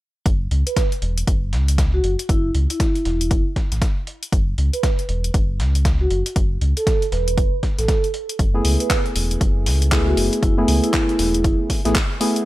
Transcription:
0.26 sub bass F#1, kick, closed hi-hat
0.51 sub bass C#2, closed hi-hat
0.67 vibraphone B4, closed hi-hat
0.77 kick, snare, closed hi-hat
0.92 closed hi-hat
1.02 sub bass E1, closed hi-hat
1.18 closed hi-hat
1.27 sub bass F#1, kick, closed hi-hat
1.53 sub bass C#2, snare, closed hi-hat
1.68 closed hi-hat
1.78 kick, snare, closed hi-hat
1.94 vibraphone F#4
2.04 sub bass F#1, closed hi-hat
2.19 closed hi-hat
2.29 sub bass F#1, vibraphone E4, kick, closed hi-hat
2.55 sub bass C#2, closed hi-hat
2.70 vibraphone E4, closed hi-hat
2.80 kick, snare, closed hi-hat
2.95 closed hi-hat
3.05 sub bass E1, snare, closed hi-hat
3.21 closed hi-hat
3.31 sub bass F#1, kick, closed hi-hat
3.56 kick, snare, closed hi-hat
3.72 sub bass A1, snare, closed hi-hat
3.82 kick, snare, closed hi-hat
4.07 closed hi-hat
4.23 closed hi-hat
4.32 sub bass F#1, kick, closed hi-hat
4.58 sub bass C#2, closed hi-hat
4.73 vibraphone B4, closed hi-hat
4.83 kick, snare, closed hi-hat
4.99 closed hi-hat
5.09 sub bass E1, closed hi-hat
5.24 closed hi-hat
5.34 sub bass F#1, kick, closed hi-hat
5.60 sub bass C#2, snare, closed hi-hat
5.75 closed hi-hat
5.85 kick, snare, closed hi-hat
6.01 vibraphone F#4
6.10 sub bass F#1, closed hi-hat
6.26 closed hi-hat
6.36 sub bass F#1, kick, closed hi-hat
6.61 sub bass C#2, closed hi-hat
6.77 vibraphone A4, closed hi-hat
6.87 vibraphone A4, kick, snare, closed hi-hat
7.02 closed hi-hat
7.12 sub bass E1, vibraphone B4, snare, closed hi-hat
7.28 closed hi-hat
7.38 sub bass F#1, kick, closed hi-hat
7.63 kick, snare, closed hi-hat
7.78 sub bass A1, vibraphone A4, snare, closed hi-hat
7.88 vibraphone A4, kick, snare, closed hi-hat
8.04 closed hi-hat
8.14 closed hi-hat
8.29 closed hi-hat
8.39 sub bass F#1, kick, closed hi-hat
8.54 synth stab A3 B3 E4 G#4
8.65 sub bass C#2, closed hi-hat, open hi-hat
8.80 vibraphone B4, closed hi-hat
8.90 kick, snare, clap, closed hi-hat
9.06 closed hi-hat
9.15 sub bass E1, closed hi-hat, open hi-hat
9.31 closed hi-hat
9.41 sub bass F#1, kick, closed hi-hat
9.66 sub bass C#2, snare, closed hi-hat, open hi-hat
9.82 closed hi-hat
9.91 synth stab A3 B3 E4 G#4, kick, snare, clap, closed hi-hat
10.07 vibraphone F#4
10.17 sub bass F#1, closed hi-hat, open hi-hat
10.33 closed hi-hat
10.43 sub bass F#1, vibraphone E4, kick, closed hi-hat
10.58 synth stab A3 B3 E4 G#4
10.68 sub bass C#2, closed hi-hat, open hi-hat
10.83 vibraphone E4, closed hi-hat
10.93 kick, snare, clap, closed hi-hat
11.09 closed hi-hat
11.19 sub bass E1, snare, closed hi-hat, open hi-hat
11.34 closed hi-hat
11.44 sub bass F#1, kick, closed hi-hat
11.70 kick, snare, closed hi-hat, open hi-hat
11.85 sub bass A1, synth stab A3 B3 E4 G#4, snare, closed hi-hat
11.95 kick, snare, clap, closed hi-hat
12.20 synth stab A3 B3 E4 G#4, closed hi-hat, open hi-hat
12.36 closed hi-hat

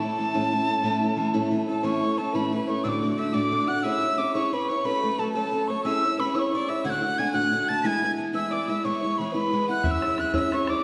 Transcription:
Already playing: fiddle A4, tin whistle A5
0.02 steel-string acoustic guitar A3 C#4 E4
0.18 steel-string acoustic guitar E3 A3 C#4 E4
0.34 steel-string acoustic guitar A2 E3 A3 C#4 E4
0.51 steel-string acoustic guitar E3 A3 C#4 E4
0.68 steel-string acoustic guitar A3 C#4 E4
0.83 steel-string acoustic guitar A2 E3 A3 C#4 E4
1.02 steel-string acoustic guitar A3 C#4 E4
1.17 steel-string acoustic guitar E3 A3 C#4 E4
1.34 steel-string acoustic guitar A2 E3 A3 C#4 E4
1.51 steel-string acoustic guitar E3 A3 C#4 E4
1.67 steel-string acoustic guitar A3 C#4 E4, fiddle A4, tin whistle A5
1.83 steel-string acoustic guitar A2 E3 A3 C#4 E4, fiddle C#5, tin whistle C#6
2.02 steel-string acoustic guitar A3 C#4 E4
2.18 steel-string acoustic guitar E3 A3 C#4 E4, fiddle A4, tin whistle A5
2.32 steel-string acoustic guitar A2 E3 A3 C#4 E4, fiddle B4, tin whistle B5
2.52 steel-string acoustic guitar E3 A3 C#4 E4, fiddle B4
2.67 steel-string acoustic guitar A3 C#4 E4, fiddle C#5, tin whistle C#6
2.84 steel-string acoustic guitar D2 A2 D3 A3 D4 F#4, fiddle D5, tin whistle E6
2.89 tin whistle D6
3.02 steel-string acoustic guitar D3 A3 D4 F#4
3.17 steel-string acoustic guitar D3 A3 D4 F#4, fiddle E5, tin whistle E6
3.33 steel-string acoustic guitar D2 A2 D3 A3 D4 F#4, fiddle D5, tin whistle D6
3.51 steel-string acoustic guitar D3 A3 D4 F#4
3.67 steel-string acoustic guitar D3 A3 D4 F#4, fiddle F#5, tin whistle F#6
3.83 steel-string acoustic guitar C#4 E4 G#4 C#5, fiddle E5, tin whistle E6
4.01 steel-string acoustic guitar E4 G#4 C#5
4.18 steel-string acoustic guitar C#4 E4 G#4 C#5, tin whistle D6
4.34 steel-string acoustic guitar C#4 E4 G#4 C#5, fiddle C#5, tin whistle C#6
4.52 steel-string acoustic guitar C#4 E4 G#4 C#5, fiddle B4, tin whistle B5
4.68 steel-string acoustic guitar E4 G#4 C#5, fiddle C#5, tin whistle C#6
4.84 steel-string acoustic guitar F#3 A3 C#4 A4, fiddle B4, tin whistle B5
5.03 steel-string acoustic guitar A3 C#4 A4, fiddle B4
5.18 steel-string acoustic guitar F#3 A3 C#4 A4, fiddle A4, tin whistle A5
5.33 steel-string acoustic guitar F#3 A3 C#4 A4, fiddle A4, tin whistle A5
5.52 steel-string acoustic guitar F#3 A3 C#4 A4
5.68 steel-string acoustic guitar A3 C#4 A4, fiddle C#5, tin whistle C#6
5.84 steel-string acoustic guitar C#4 E4 G#4 C#5, fiddle E5, tin whistle E6
6.04 steel-string acoustic guitar E4 G#4 C#5
6.17 steel-string acoustic guitar C#4 E4 G#4 C#5, fiddle B4, tin whistle B5
6.33 steel-string acoustic guitar C#4 E4 G#4 C#5, fiddle C#5, tin whistle E6
6.39 tin whistle C#6
6.53 steel-string acoustic guitar C#4 E4 G#4 C#5, fiddle D5
6.68 steel-string acoustic guitar E4 G#4 C#5, fiddle E5, tin whistle E6
6.84 steel-string acoustic guitar D2 A2 D3 A3 D4 F#4, fiddle F#5, tin whistle G#6
6.90 tin whistle F#6
7.02 steel-string acoustic guitar D3 A3 D4 F#4, fiddle F#5
7.18 steel-string acoustic guitar D3 A3 D4 F#4, fiddle G#5, tin whistle G#6
7.32 steel-string acoustic guitar D2 A2 D3 A3 D4 F#4, fiddle F#5, tin whistle F#6
7.52 steel-string acoustic guitar D3 A3 D4 F#4
7.68 steel-string acoustic guitar D3 A3 D4 F#4, fiddle A5, tin whistle A6
7.83 steel-string acoustic guitar E3 G#3 B3 E4, fiddle G#5, tin whistle G#6 B6
8.02 steel-string acoustic guitar G#3 B3 E4
8.17 steel-string acoustic guitar E3 G#3 B3 E4
8.33 steel-string acoustic guitar E3 G#3 B3 E4, fiddle E5, tin whistle E6
8.50 steel-string acoustic guitar E3 G#3 B3 E4, fiddle D5, tin whistle D6
8.68 steel-string acoustic guitar G#3 B3 E4, fiddle E5, tin whistle E6
8.84 steel-string acoustic guitar E3 G#3 B3 E4, fiddle C#5, tin whistle C#6
9.01 steel-string acoustic guitar G#3 B3 E4, fiddle C#5
9.18 steel-string acoustic guitar E3 G#3 B3 E4, tin whistle B5
9.31 steel-string acoustic guitar E3 G#3 B3 E4, fiddle B4, tin whistle B5
9.52 steel-string acoustic guitar E3 G#3 B3 E4
9.67 steel-string acoustic guitar G#3 B3 E4, fiddle F#5, tin whistle F#6
9.83 steel-string acoustic guitar C#4 E4 G#4 C#5, fiddle E5, bodhran
9.87 tin whistle E6 F#6
10.01 steel-string acoustic guitar E4 G#4 C#5, bodhran
10.17 steel-string acoustic guitar C#4 E4 G#4 C#5, tin whistle F#6, bodhran
10.34 steel-string acoustic guitar C#4 E4 G#4 C#5, fiddle E5, tin whistle E6, bodhran
10.52 steel-string acoustic guitar C#4 E4 G#4 C#5, fiddle C#5, tin whistle C#6, bodhran
10.67 steel-string acoustic guitar E4 G#4 C#5, fiddle D5, tin whistle D6, bodhran

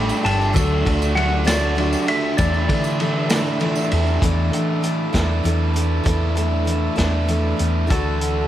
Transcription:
Already playing: fingered electric bass A1, steel-string acoustic guitar G3 A3 D4 G4, tonewheel organ A4 D5 G5 D6, electric slide guitar B5
0.09 tambourine
0.23 fingered electric bass G1, steel-string acoustic guitar A3 D4 G4, electric slide guitar A5, ride, tambourine
0.42 tambourine
0.53 fingered electric bass D2, steel-string acoustic guitar D3 F#3 A3 D4 F#4, electric slide guitar A4, kick, ride, tambourine
0.58 tonewheel organ F#5 D6
0.85 fingered electric bass D2, steel-string acoustic guitar A3 D4 F#4, kick, ride
1.02 tambourine
1.15 overdriven electric guitar D3, steel-string acoustic guitar F#3 A3 D4 F#4, electric slide guitar F#5, ride
1.44 steel-string acoustic guitar D3 F#3 A3 D4 F#4, electric slide guitar D5, snare, ride, tambourine
1.49 overdriven electric guitar A3 D4
1.75 overdriven electric guitar D3, steel-string acoustic guitar F#3 A3 D4 F#4, ride, tambourine
1.93 tambourine
2.06 steel-string acoustic guitar A3 D4 F#4, electric slide guitar E5, ride, tambourine
2.37 fingered electric bass E2, steel-string acoustic guitar E3 A3 D4 A4, overdriven electric guitar E4, electric slide guitar D5, tonewheel organ E5, kick, ride, tambourine
2.54 tambourine
2.69 fingered electric bass D3, steel-string acoustic guitar A3 D4 A4, overdriven electric guitar E4, kick, ride
2.84 tambourine
3.00 steel-string acoustic guitar E3 A3 D4 A4, overdriven electric guitar E4, ride, tambourine
3.30 steel-string acoustic guitar E3 A3 D4 A4, overdriven electric guitar E4, snare, ride, tambourine
3.46 tambourine
3.60 steel-string acoustic guitar E3 A3 D4 A4, overdriven electric guitar E4, ride, tambourine
3.76 tambourine
3.91 fingered electric bass E2, steel-string acoustic guitar A3 D4 A4, overdriven electric guitar E4, ride
4.07 tambourine
4.21 fingered electric bass E2, steel-string acoustic guitar E3 A3 D4 A4, overdriven electric guitar E4, tonewheel organ A4 D5 E5 D6, kick, closed hi-hat
4.52 fingered electric bass E3, steel-string acoustic guitar A3 D4 A4, closed hi-hat
4.82 steel-string acoustic guitar E3 A3 D4 A4, closed hi-hat
5.13 fingered electric bass E2, steel-string acoustic guitar E3 A3 D4 A4, overdriven electric guitar E4, kick, snare, closed hi-hat
5.43 fingered electric bass E2, steel-string acoustic guitar E3 A3 D4 A4, closed hi-hat
5.74 steel-string acoustic guitar A3 D4 A4, closed hi-hat
6.04 fingered electric bass E2, steel-string acoustic guitar E3 A3 D4 A4, overdriven electric guitar E4, kick, closed hi-hat
6.35 steel-string acoustic guitar A3 D4 A4, closed hi-hat
6.65 steel-string acoustic guitar E3 A3 D4 A4, closed hi-hat
6.96 fingered electric bass E2, steel-string acoustic guitar E3 A3 D4 A4, overdriven electric guitar E4, kick, snare, closed hi-hat
7.28 steel-string acoustic guitar E3 A3 D4 A4, closed hi-hat
7.56 fingered electric bass E2, steel-string acoustic guitar A3 D4 A4, closed hi-hat
7.87 fingered electric bass D2, steel-string acoustic guitar D3 E3 A3 D4 F#4, kick, closed hi-hat
7.91 overdriven electric guitar F#4, electric slide guitar A4, tonewheel organ A4 E5 F#5 A5
8.21 closed hi-hat

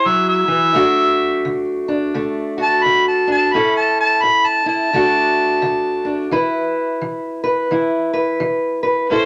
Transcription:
Already playing: steel-string acoustic guitar E4 G#4
0.06 steel-string acoustic guitar F#3, harmonica E5
0.29 harmonica E5
0.48 steel-string acoustic guitar E3
0.74 steel-string acoustic guitar D3 A3 D4 F#4
1.45 steel-string acoustic guitar D3
1.88 steel-string acoustic guitar D4
2.14 steel-string acoustic guitar D3 A3
2.58 steel-string acoustic guitar F#4
2.62 harmonica A5
2.84 steel-string acoustic guitar D3, harmonica B5
3.08 harmonica A5
3.27 steel-string acoustic guitar D4, harmonica A5
3.53 steel-string acoustic guitar A2 C#4 E4 A4, harmonica B5
3.77 harmonica A5
4.01 harmonica A5
4.23 steel-string acoustic guitar A2, harmonica B5
4.47 harmonica A5
4.66 steel-string acoustic guitar E4, harmonica A5
4.93 steel-string acoustic guitar D3 A3 D4 F#4
5.62 steel-string acoustic guitar D3
6.05 steel-string acoustic guitar D4
6.31 steel-string acoustic guitar E3 E4 B4
7.01 steel-string acoustic guitar E3
7.44 steel-string acoustic guitar B4
7.71 steel-string acoustic guitar E3 E4
8.13 steel-string acoustic guitar B4
8.40 steel-string acoustic guitar E3
8.83 steel-string acoustic guitar B4
9.10 steel-string acoustic guitar A2 C#4 E4 A4, harmonica C5

